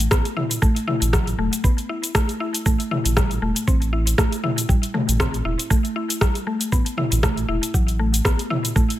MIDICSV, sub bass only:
0, 0, Header, 1, 2, 480
1, 0, Start_track
1, 0, Tempo, 508475
1, 588, Time_signature, 4, 2, 24, 8
1, 8490, End_track
2, 0, Start_track
2, 0, Title_t, "Sub bass"
2, 0, Program_c, 0, 38
2, 110, Note_on_c, 0, 33, 92
2, 214, Note_off_c, 0, 33, 0
2, 960, Note_on_c, 0, 33, 98
2, 1271, Note_off_c, 0, 33, 0
2, 1308, Note_on_c, 0, 28, 82
2, 1413, Note_off_c, 0, 28, 0
2, 2510, Note_on_c, 0, 33, 97
2, 2614, Note_off_c, 0, 33, 0
2, 2882, Note_on_c, 0, 33, 97
2, 3192, Note_off_c, 0, 33, 0
2, 3228, Note_on_c, 0, 28, 86
2, 3333, Note_off_c, 0, 28, 0
2, 3471, Note_on_c, 0, 33, 87
2, 3913, Note_off_c, 0, 33, 0
2, 3949, Note_on_c, 0, 33, 94
2, 4054, Note_off_c, 0, 33, 0
2, 4802, Note_on_c, 0, 33, 102
2, 5112, Note_off_c, 0, 33, 0
2, 5146, Note_on_c, 0, 28, 83
2, 5252, Note_off_c, 0, 28, 0
2, 6346, Note_on_c, 0, 33, 98
2, 6452, Note_off_c, 0, 33, 0
2, 6720, Note_on_c, 0, 33, 102
2, 7031, Note_off_c, 0, 33, 0
2, 7066, Note_on_c, 0, 28, 83
2, 7172, Note_off_c, 0, 28, 0
2, 7308, Note_on_c, 0, 33, 89
2, 7752, Note_off_c, 0, 33, 0
2, 7790, Note_on_c, 0, 33, 92
2, 7894, Note_off_c, 0, 33, 0
2, 8490, End_track
0, 0, End_of_file